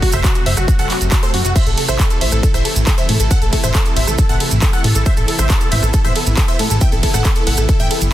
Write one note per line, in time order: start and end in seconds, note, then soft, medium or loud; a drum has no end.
0.00 8.13 C3 medium
0.00 1.52 F#3 medium
0.00 1.52 A3 medium
0.00 1.52 F#4 medium
0.00 0.10 F#4 medium
0.00 kick medium
0.00 open hi-hat loud
0.12 0.22 F#1 medium
0.12 0.21 C5 medium
0.12 0.21 E5 medium
0.12 cross-stick medium
0.12 closed hi-hat medium
0.12 maracas medium
0.24 0.32 F#4 medium
0.24 kick loud
0.24 clap loud
0.24 closed hi-hat medium
0.24 maracas medium
0.35 0.43 F#4 medium
0.35 closed hi-hat medium
0.35 maracas soft
0.46 0.55 F#1 medium
0.46 0.54 C5 medium
0.46 0.54 E5 medium
0.46 0.54 E5 loud
0.46 open hi-hat medium
0.57 0.66 F#1 medium
0.57 0.65 F#4 medium
0.57 cross-stick medium
0.57 closed hi-hat medium
0.57 maracas medium
0.68 0.76 F#4 medium
0.68 kick loud
0.68 closed hi-hat medium
0.68 maracas medium
0.79 0.88 F#1 medium
0.79 0.87 A4 medium
0.79 0.87 F#5 medium
0.79 closed hi-hat medium
0.79 maracas soft
0.90 0.98 F#4 medium
0.90 clap medium
0.90 open hi-hat loud
1.01 1.10 F#1 medium
1.01 closed hi-hat medium
1.01 maracas medium
1.12 1.20 F#4 medium
1.12 kick loud
1.12 clap loud
1.12 closed hi-hat medium
1.12 maracas medium
1.23 1.31 A4 medium
1.23 1.31 C5 medium
1.23 cross-stick medium
1.23 closed hi-hat medium
1.23 maracas soft
1.34 1.43 F#2 loud
1.34 1.42 F#4 medium
1.34 open hi-hat medium
1.45 1.54 F#1 medium
1.45 1.53 F#4 medium
1.45 closed hi-hat medium
1.45 maracas medium
1.56 8.13 E3 medium
1.56 5.03 A3 medium
1.56 8.13 E4 medium
1.56 1.64 C5 medium
1.56 1.64 E5 loud
1.56 kick loud
1.56 closed hi-hat medium
1.56 ride medium
1.56 crash medium
1.56 maracas medium
1.66 1.76 A1 medium
1.66 1.75 A4 medium
1.66 closed hi-hat medium
1.66 maracas soft
1.78 1.86 A4 medium
1.78 open hi-hat loud
1.78 ride medium
1.88 1.97 A1 medium
1.88 1.97 C5 medium
1.88 1.97 E5 medium
1.88 cross-stick medium
1.88 closed hi-hat medium
1.88 maracas medium
1.99 2.08 A4 medium
1.99 kick loud
1.99 clap loud
1.99 closed hi-hat medium
1.99 ride medium
1.99 maracas medium
2.10 2.19 A4 medium
2.10 closed hi-hat medium
2.10 maracas soft
2.21 2.30 A1 loud
2.21 2.30 C5 medium
2.21 2.29 E5 medium
2.21 open hi-hat medium
2.21 ride medium
2.32 2.41 A1 medium
2.32 2.40 A4 medium
2.32 cross-stick medium
2.32 closed hi-hat medium
2.32 maracas medium
2.43 2.51 A4 medium
2.43 kick loud
2.43 closed hi-hat medium
2.43 ride medium
2.43 maracas medium
2.54 2.63 A1 medium
2.54 2.62 C5 medium
2.54 2.62 E5 medium
2.54 cross-stick medium
2.54 closed hi-hat medium
2.54 maracas soft
2.65 2.73 A4 medium
2.65 open hi-hat loud
2.65 ride medium
2.76 2.85 A1 medium
2.76 closed hi-hat medium
2.76 maracas medium
2.87 2.95 A4 medium
2.87 kick loud
2.87 clap loud
2.87 closed hi-hat medium
2.87 ride medium
2.87 maracas medium
2.98 3.06 C5 medium
2.98 3.06 E5 loud
2.98 3.06 E5 medium
2.98 closed hi-hat medium
2.98 maracas soft
3.09 3.18 A2 medium
3.09 3.17 A4 medium
3.09 open hi-hat medium
3.09 ride medium
3.20 3.29 A1 medium
3.20 3.28 A4 medium
3.20 closed hi-hat medium
3.20 maracas medium
3.31 3.39 A4 medium
3.31 3.39 F#5 loud
3.31 kick loud
3.31 closed hi-hat medium
3.31 ride medium
3.31 maracas medium
3.42 3.51 A1 medium
3.42 3.50 A4 medium
3.42 closed hi-hat medium
3.42 maracas soft
3.53 3.61 A4 medium
3.53 kick medium
3.53 open hi-hat loud
3.53 ride medium
3.63 3.73 A1 medium
3.63 3.72 C5 medium
3.63 3.72 E5 medium
3.63 cross-stick medium
3.63 closed hi-hat medium
3.63 maracas medium
3.75 3.83 A4 medium
3.75 kick loud
3.75 clap loud
3.75 closed hi-hat medium
3.75 ride medium
3.75 maracas medium
3.85 3.94 A4 medium
3.85 closed hi-hat medium
3.85 maracas soft
3.96 4.05 A1 medium
3.96 4.04 C5 medium
3.96 4.04 E5 medium
3.96 4.05 E5 loud
3.96 open hi-hat loud
3.96 ride medium
4.07 4.16 A1 medium
4.07 4.15 A4 medium
4.07 4.16 A4 medium
4.07 cross-stick medium
4.07 closed hi-hat medium
4.07 maracas medium
4.18 4.26 A4 medium
4.18 4.27 A4 medium
4.18 kick loud
4.18 closed hi-hat medium
4.18 ride medium
4.18 maracas medium
4.29 4.38 A1 medium
4.29 4.37 A4 medium
4.29 4.37 F#5 medium
4.29 4.38 F#5 medium
4.29 closed hi-hat medium
4.29 maracas soft
4.40 4.48 A4 medium
4.40 open hi-hat loud
4.40 ride medium
4.51 4.60 A1 medium
4.51 closed hi-hat medium
4.51 maracas medium
4.62 4.70 A4 medium
4.62 kick loud
4.62 clap loud
4.62 closed hi-hat medium
4.62 ride medium
4.62 maracas medium
4.73 4.81 A4 medium
4.73 4.81 F#5 loud
4.73 4.81 F#5 medium
4.73 cross-stick medium
4.73 closed hi-hat medium
4.73 maracas soft
4.84 4.93 A2 loud
4.84 4.92 A4 medium
4.84 open hi-hat medium
4.84 ride medium
4.95 5.04 A1 medium
4.95 5.03 A4 medium
4.95 closed hi-hat medium
4.95 maracas medium
5.06 8.13 B3 medium
5.06 5.14 C5 medium
5.06 5.14 E5 loud
5.06 kick loud
5.06 closed hi-hat medium
5.06 ride medium
5.06 maracas medium
5.17 5.26 A1 medium
5.17 5.25 A4 medium
5.17 closed hi-hat medium
5.17 maracas soft
5.28 5.36 A4 medium
5.28 open hi-hat loud
5.28 ride medium
5.39 5.48 A1 medium
5.39 5.47 C5 medium
5.39 5.47 E5 medium
5.39 5.47 E5 loud
5.39 cross-stick medium
5.39 closed hi-hat medium
5.39 maracas medium
5.50 5.58 A4 medium
5.50 kick loud
5.50 clap loud
5.50 closed hi-hat medium
5.50 ride medium
5.50 maracas medium
5.61 5.69 A4 medium
5.61 closed hi-hat medium
5.61 maracas soft
5.72 5.81 A1 loud
5.72 5.80 C5 medium
5.72 5.80 E5 loud
5.72 open hi-hat medium
5.72 ride medium
5.82 5.92 A1 medium
5.82 5.91 A4 medium
5.82 cross-stick medium
5.82 closed hi-hat medium
5.82 maracas medium
5.93 6.02 A4 medium
5.93 kick loud
5.93 closed hi-hat medium
5.93 ride medium
5.93 maracas medium
6.04 6.14 A1 medium
6.04 6.13 C5 medium
6.04 6.13 E5 medium
6.04 cross-stick medium
6.04 closed hi-hat medium
6.04 maracas soft
6.15 6.23 A4 medium
6.15 6.24 A4 medium
6.15 open hi-hat loud
6.15 ride medium
6.27 6.36 A1 medium
6.27 closed hi-hat medium
6.27 maracas medium
6.37 6.45 A4 medium
6.37 6.46 A4 medium
6.37 kick loud
6.37 clap loud
6.37 closed hi-hat medium
6.37 ride medium
6.37 maracas medium
6.48 6.56 C5 medium
6.48 6.56 E5 medium
6.48 6.57 E5 medium
6.48 closed hi-hat medium
6.48 maracas soft
6.59 6.68 A2 loud
6.59 6.67 A4 medium
6.59 6.68 A4 medium
6.59 open hi-hat loud
6.59 ride medium
6.70 6.79 A1 medium
6.70 6.78 A4 medium
6.70 6.79 A4 medium
6.70 closed hi-hat medium
6.70 maracas medium
6.81 6.89 E5 medium
6.81 6.89 G5 loud
6.81 kick loud
6.81 closed hi-hat medium
6.81 ride medium
6.81 maracas medium
6.92 7.01 A1 medium
6.92 7.00 A4 medium
6.92 closed hi-hat medium
6.92 maracas soft
7.03 7.11 A4 medium
7.03 kick medium
7.03 open hi-hat loud
7.03 ride medium
7.14 7.23 A1 medium
7.14 7.22 A4 medium
7.14 7.22 F#5 loud
7.14 7.22 F#5 medium
7.14 cross-stick medium
7.14 closed hi-hat medium
7.14 maracas medium
7.25 7.33 A4 medium
7.25 kick loud
7.25 clap loud
7.25 closed hi-hat medium
7.25 ride medium
7.25 maracas medium
7.35 7.44 A4 medium
7.35 closed hi-hat medium
7.35 maracas soft
7.47 7.56 A1 medium
7.47 7.55 A4 medium
7.47 7.55 F#5 medium
7.47 open hi-hat loud
7.47 ride medium
7.57 7.67 A1 medium
7.57 7.66 A4 medium
7.57 cross-stick medium
7.57 closed hi-hat medium
7.57 maracas medium
7.69 7.77 A4 medium
7.69 kick loud
7.69 closed hi-hat medium
7.69 ride medium
7.69 maracas medium
7.80 7.89 A1 medium
7.80 7.88 E5 medium
7.80 7.88 G5 medium
7.80 closed hi-hat medium
7.80 maracas soft
7.91 7.99 A4 medium
7.91 open hi-hat loud
7.91 ride medium
8.01 8.11 G1 medium
8.01 closed hi-hat soft
8.01 maracas medium